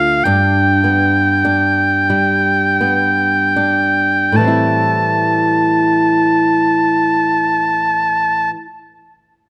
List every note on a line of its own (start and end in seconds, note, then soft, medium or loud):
0.00 0.25 D2 medium
0.00 0.36 A3 soft
0.00 0.26 D4 soft
0.00 0.26 F4 soft
0.00 0.24 F5 medium
0.24 4.36 G2 medium
0.24 1.44 D4 soft
0.24 4.36 G5 medium
0.84 2.79 B3 soft
1.45 3.55 D4 soft
2.10 4.40 G3 soft
2.81 4.44 B3 soft
3.56 4.47 D4 soft
4.32 8.50 A2 soft
4.32 8.50 A5 soft
4.37 8.55 E3 soft
4.37 8.58 G3 soft
4.44 8.62 C4 soft
4.44 8.65 E4 soft